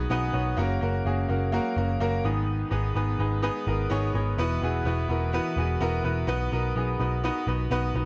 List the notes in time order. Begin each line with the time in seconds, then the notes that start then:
Already playing: B3 D#4 F#4 G#4 B4
0.10 B1 B3 D#4 F#4 B4 G#5
0.33 B1 B3 D#4 F#4 C#5 F#5
0.57 F#1 C#3 F#3 A#3 C#4 F#4 A#4
0.81 F#1 A#3 C#4 F#4 A#4
1.05 F#1 A#3 C#4 F#4 G#4
1.29 F#1 A#3 C#4 F#4 A#4
1.52 A#3 C#4 F#4 A#4
1.76 F#1 A#3 C#4 F#4 A#4
2.00 F#1 A#3 C#4 F#4 A#4
2.24 G#1 G#2 D#3 G#3 B3 D#4 G#4 B4
2.71 G#1 B3 D#4 G#4 B4
2.95 G#1 B3 D#4 G#4 B4
3.19 G#1 B3 D#4 G#4 B4
3.42 B3 D#4 G#4 B4
3.67 G#1 B3 D#4 G#4 A#4
3.90 G#1 B3 D#4 G#4 C#5
4.14 G#1 B3 D#4 G#4 C#5
4.37 E1 B2 E3 B3 E4 F#4 B4
4.62 E1 B3 E4 F#4 G#4
4.85 E1 B3 E4 F#4 B4
5.09 E1 B3 E4 F#4 A#4
5.33 B3 E4 F#4 B4
5.57 E1 B3 E4 F#4 G#4
5.80 E1 B3 E4 F#4 A#4
6.03 E1 B3 E4 F#4 B4
6.27 B1 B3 D#4 F#4 B4
6.52 B1 B3 D#4 F#4 A#4
6.76 B1 B3 D#4 F#4 G#4
6.99 B1 B3 D#4 F#4 B4
7.23 B3 D#4 F#4 B4
7.47 B1 B3 D#4 F#4 B4
7.71 B1 B3 D#4 F#4 B4
7.95 B1 B3 D#4 F#4 B4